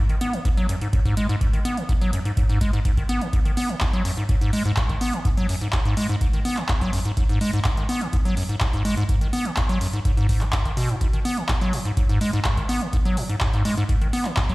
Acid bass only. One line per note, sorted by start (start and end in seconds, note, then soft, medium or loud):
0.09 0.16 D#3 medium
0.21 0.35 B3 loud
0.33 0.40 D#3 medium
0.45 0.49 G#2 loud
0.57 0.67 F#3 loud
0.69 0.76 F#2 medium
0.81 0.88 G#2 medium
0.93 1.00 G#2 medium
1.05 1.15 G#2 loud
1.17 1.27 G#3 loud
1.29 1.36 G#2 loud
1.41 1.48 G#2 medium
1.53 1.60 D#3 medium
1.65 1.79 B3 medium
1.77 1.84 D#3 medium
1.89 1.93 G#2 loud
2.01 2.11 F#3 loud
2.13 2.20 F#2 medium
2.25 2.32 G#2 medium
2.37 2.44 G#2 medium
2.49 2.59 G#2 loud
2.61 2.71 G#3 loud
2.73 2.80 G#2 loud
2.85 2.92 G#2 medium
2.97 3.04 D#3 medium
3.09 3.23 B3 loud
3.21 3.28 D#3 medium
3.33 3.40 G#2 medium
3.45 3.52 D#3 medium
3.57 3.71 B3 loud
3.69 3.76 D#3 medium
3.81 3.85 G#2 loud
3.93 4.03 F#3 loud
4.05 4.12 F#2 medium
4.17 4.24 G#2 medium
4.29 4.36 G#2 medium
4.41 4.51 G#2 loud
4.53 4.63 G#3 loud
4.65 4.72 G#2 medium
4.77 4.84 G#2 medium
4.89 4.96 D#3 medium
5.01 5.15 B3 loud
5.13 5.20 D#3 medium
5.25 5.29 G#2 loud
5.37 5.47 F#3 medium
5.49 5.56 F#2 medium
5.61 5.68 G#2 medium
5.73 5.80 G#2 medium
5.85 5.95 G#2 loud
5.97 6.07 G#3 loud
6.09 6.16 G#2 loud
6.21 6.28 G#2 medium
6.33 6.40 D#3 medium
6.45 6.59 B3 loud
6.57 6.64 D#3 medium
6.69 6.73 G#2 loud
6.81 6.91 F#3 loud
6.93 7.00 F#2 medium
7.05 7.12 G#2 medium
7.17 7.24 G#2 medium
7.29 7.39 G#2 loud
7.41 7.51 G#3 medium
7.53 7.60 G#2 loud
7.65 7.72 G#2 medium
7.77 7.84 D#3 medium
7.89 8.03 B3 loud
8.01 8.08 D#3 medium
8.13 8.17 G#2 loud
8.25 8.35 F#3 loud
8.37 8.44 F#2 medium
8.49 8.56 G#2 medium
8.61 8.68 G#2 medium
8.73 8.83 G#2 loud
8.85 8.95 G#3 loud
8.97 9.04 G#2 loud
9.09 9.16 G#2 medium
9.21 9.28 D#3 medium
9.33 9.47 B3 loud
9.45 9.52 D#3 medium
9.57 9.61 G#2 loud
9.69 9.79 F#3 loud
9.81 9.88 F#2 medium
9.93 10.00 G#2 medium
10.05 10.12 G#2 medium
10.17 10.27 G#2 loud
10.29 10.43 G#2 medium
10.41 10.45 G#3 medium
10.53 10.63 G#2 medium
10.65 10.72 D#3 medium
10.77 10.91 B2 loud
10.89 10.96 G#2 medium
11.01 11.08 G#2 medium
11.13 11.20 D#3 medium
11.25 11.39 B3 loud
11.37 11.44 D#3 medium
11.49 11.53 G#2 loud
11.61 11.75 F#3 loud
11.73 11.80 A2 medium
11.85 11.92 G#2 medium
11.97 12.04 G#2 medium
12.09 12.19 G#2 loud
12.21 12.31 G#3 loud
12.33 12.40 G#2 loud
12.45 12.52 G#2 medium
12.57 12.64 D#3 medium
12.69 12.83 B3 loud
12.81 12.88 D#3 medium
12.93 12.97 G#2 loud
13.05 13.19 F#3 loud
13.17 13.24 A2 medium
13.30 13.36 G#2 medium
13.41 13.48 G#2 medium
13.54 13.63 G#2 loud
13.65 13.75 G#3 loud
13.77 13.84 G#2 loud
13.89 13.96 G#2 medium
14.01 14.08 D#3 medium
14.13 14.27 B3 loud
14.25 14.32 D#3 medium
14.37 14.41 G#2 loud
14.49 14.55 F#3 loud